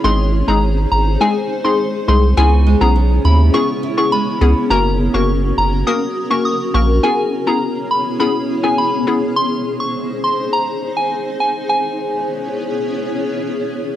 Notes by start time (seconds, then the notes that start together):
Already playing: G#4
0.04 G#1 G#3 C4 D#4 G#4 C5 C6
0.48 G#1 G#3 C4 D#4 G#4 A#5
0.92 G#1 A#5
1.21 G#3 C4 D#4 G#4 G#5
1.64 G#3 C4 D#4 G#4 C6
2.08 C2 G#3 C4 D#4 G#4 C6
2.37 C#2 C#3 B3 C#4 E4 G#4 C#5 G#5
2.67 G#3
2.81 B1 B3 C#4 E4 G#4 A#5
2.96 B3
3.25 D#2 E4 B5
3.54 B3 C#4 E4 G#4 C#6
3.83 E4
3.97 B3 C#4 E4 G#4 C#6
4.12 G#3 B5
4.41 C#2 B3 C#4 E4 G#4
4.70 F#1 A#3 C#4 F#4 A#4 A#5
5.14 F#1 A#3 C#4 F#4 A#4 C#6
5.58 F#1 A#5
5.87 A#3 C#4 F#4 A#4 D#6
6.30 A#3 C#4 F#4 A#4 C#6
6.45 D#6
6.74 A#1 A#3 C#4 F#4 A#4 C#6
7.03 B3 C#4 E4 G#4 C#5 G#5
7.47 B3 C#4 E4 G#4 A#5
7.91 B5
8.20 B3 C#4 E4 G#4 B5
8.63 B3 C#4 E4 G#4 G#5
8.78 B5
9.07 B3 C#4 E4 G#4
9.36 D#4 C5 C6
9.80 C#6
10.24 C6
10.53 A#5
10.97 G#5
11.40 G#5
11.69 B3 C#4 E4 G#4 C#5 G#5